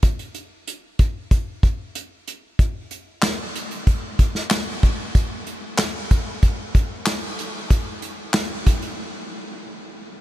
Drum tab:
HH |xxx-x-x-x-x-x-x-|x-x-x-xxx-x-x-x-|x-x-x-x-x-x-x-x-|x-x-x-xx--------|
CP |----------------|----x-------x---|----x-------x---|----x-----------|
SD |----------------|----o------oo---|----o-------o---|----o-----------|
BD |o-----o-o-o-----|o-------o-o---o-|o-----o-o-o-----|o-----o---------|